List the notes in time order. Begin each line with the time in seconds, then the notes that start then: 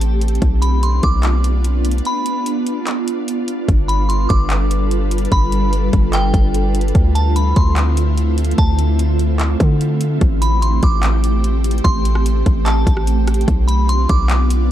Already playing: A1 A3 C4 G4 A5
0.01 closed hi-hat
0.21 closed hi-hat
0.28 closed hi-hat
0.35 closed hi-hat
0.42 B1 B3 D4 F4, kick, closed hi-hat
0.62 B5, closed hi-hat
0.83 C6, closed hi-hat
1.03 B1 D6, kick, closed hi-hat
1.23 clap, closed hi-hat
1.44 closed hi-hat
1.64 closed hi-hat
1.85 closed hi-hat
1.91 closed hi-hat
1.98 closed hi-hat
2.05 B5, closed hi-hat
2.26 closed hi-hat
2.46 closed hi-hat
2.67 closed hi-hat
2.87 clap, closed hi-hat
3.08 closed hi-hat
3.28 closed hi-hat
3.48 closed hi-hat
3.68 G1 G3 A4 B4, kick, closed hi-hat
3.88 B5, closed hi-hat
4.09 C6, closed hi-hat
4.29 G1 D6, kick, closed hi-hat
4.50 clap, closed hi-hat
4.71 closed hi-hat
4.91 closed hi-hat
5.11 closed hi-hat
5.18 closed hi-hat
5.25 closed hi-hat
5.32 G1 B5, kick, closed hi-hat
5.52 closed hi-hat
5.73 closed hi-hat
5.93 G1, kick, closed hi-hat
6.13 G5, clap, closed hi-hat
6.34 G1, kick, closed hi-hat
6.54 closed hi-hat
6.75 closed hi-hat
6.81 closed hi-hat
6.88 closed hi-hat
6.95 D2 D3 A3 C4 E4, kick, closed hi-hat
7.15 A5, closed hi-hat
7.36 B5, closed hi-hat
7.56 D2 C6, kick, closed hi-hat
7.76 clap, closed hi-hat
7.97 closed hi-hat
8.18 closed hi-hat
8.38 closed hi-hat
8.45 closed hi-hat
8.51 closed hi-hat
8.58 D2 A5, kick, closed hi-hat
8.79 closed hi-hat
8.99 closed hi-hat
9.19 closed hi-hat
9.39 clap, closed hi-hat
9.60 D3, kick, closed hi-hat
9.81 closed hi-hat
10.01 closed hi-hat
10.21 A1 A3 C4 G4, kick, closed hi-hat
10.42 B5, closed hi-hat
10.62 C6, closed hi-hat
10.83 A1 D6, kick, closed hi-hat
11.03 clap, closed hi-hat
11.24 closed hi-hat
11.44 closed hi-hat
11.64 closed hi-hat
11.71 closed hi-hat
11.78 closed hi-hat
11.84 A1 C6, kick, closed hi-hat
12.05 closed hi-hat
12.15 cross-stick
12.26 closed hi-hat
12.46 A1, kick, closed hi-hat
12.65 A5, clap, closed hi-hat
12.87 A1, kick, closed hi-hat
12.97 cross-stick
13.07 closed hi-hat
13.27 cross-stick, closed hi-hat
13.34 closed hi-hat
13.41 closed hi-hat
13.48 B1 B3 D4 F4, kick, closed hi-hat
13.68 B5, closed hi-hat
13.89 C6, closed hi-hat
14.09 B1 D6, kick, closed hi-hat
14.29 clap, closed hi-hat
14.50 closed hi-hat